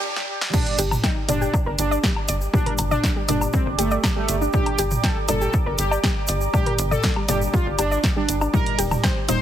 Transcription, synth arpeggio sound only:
0.53 0.61 G3 medium
0.53 0.61 G4 medium
0.78 0.89 G4 loud
0.78 0.89 G5 medium
1.03 1.08 G5 loud
1.03 1.08 G6 medium
1.28 1.36 D5 medium
1.28 1.36 D6 medium
1.41 1.48 G4 medium
1.41 1.48 G5 medium
1.66 1.73 A#4 medium
1.66 1.73 A#5 medium
1.91 1.95 D5 loud
1.91 1.95 D6 medium
2.03 2.11 G4 medium
2.03 2.11 G5 medium
2.28 2.36 D5 medium
2.28 2.36 D6 medium
2.53 2.64 G3 medium
2.53 2.64 G4 medium
2.66 2.73 A#4 medium
2.66 2.73 A#5 medium
2.91 2.95 D5 loud
2.91 2.95 D6 medium
3.16 3.23 G3 medium
3.16 3.23 G4 medium
3.28 3.36 D5 medium
3.28 3.36 D6 medium
3.53 3.64 G3 loud
3.53 3.64 G4 medium
3.78 3.83 G4 medium
3.78 3.83 G5 medium
3.91 3.95 D5 loud
3.91 3.95 D6 medium
4.16 4.23 G3 medium
4.16 4.23 G4 medium
4.41 4.51 D4 medium
4.41 4.51 D5 medium
4.53 4.61 G3 medium
4.53 4.61 G4 medium
4.78 4.89 G4 loud
4.78 4.89 G5 medium
5.04 5.08 G5 loud
5.04 5.08 G6 medium
5.28 5.36 D5 medium
5.28 5.36 D6 medium
5.41 5.48 G4 medium
5.41 5.48 G5 medium
5.66 5.73 A#4 medium
5.66 5.73 A#5 medium
5.91 5.95 D5 loud
5.91 5.95 D6 medium
6.03 6.11 G4 medium
6.03 6.11 G5 medium
6.28 6.36 D5 medium
6.28 6.36 D6 medium
6.54 6.64 G3 medium
6.54 6.64 G4 medium
6.66 6.73 A#4 medium
6.66 6.73 A#5 medium
6.91 6.95 D5 loud
6.91 6.95 D6 medium
7.16 7.23 G3 medium
7.16 7.23 G4 medium
7.28 7.36 D5 medium
7.28 7.36 D6 medium
7.53 7.64 G3 loud
7.53 7.64 G4 medium
7.79 7.83 G4 medium
7.79 7.83 G5 medium
7.91 7.95 D5 loud
7.91 7.95 D6 medium
8.16 8.23 G3 medium
8.16 8.23 G4 medium
8.41 8.51 D4 medium
8.41 8.51 D5 medium
8.53 8.61 G3 medium
8.53 8.61 G4 medium
8.78 8.89 G4 loud
8.78 8.89 G5 medium
9.03 9.08 G5 loud
9.03 9.08 G6 medium
9.28 9.36 D#5 medium
9.28 9.36 D#6 medium

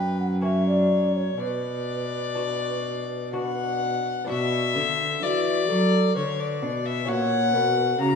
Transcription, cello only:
0.00 1.37 F#2 medium
1.38 4.04 B2 medium
4.29 4.77 B2 medium
4.76 5.22 D3 medium
5.23 5.68 E3 medium
5.70 6.15 F#3 medium
6.17 6.64 D3 medium
6.63 7.10 B2 medium
7.08 7.55 A#2 medium
7.54 8.00 B2 medium
8.00 8.15 C#3 medium

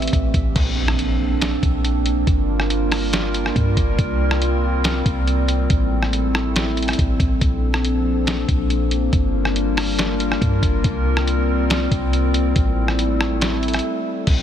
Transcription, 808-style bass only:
0.13 0.33 A1 loud
0.34 0.55 A1 loud
0.56 1.59 A#1 loud
1.63 2.25 A#1 loud
2.27 3.52 G1 loud
3.56 3.76 G2 loud
3.77 3.98 G1 loud
3.99 5.02 C2 loud
5.06 5.67 C2 loud
5.70 6.95 A1 loud
6.99 7.19 A1 loud
7.20 7.40 A1 loud
7.41 8.45 A#1 loud
8.48 9.10 A#1 loud
9.13 10.37 G1 loud
10.42 10.62 G2 loud
10.63 10.83 G1 loud
10.84 11.87 C2 loud
11.91 12.53 C2 loud
12.56 13.80 A1 loud
14.27 14.43 A#1 loud

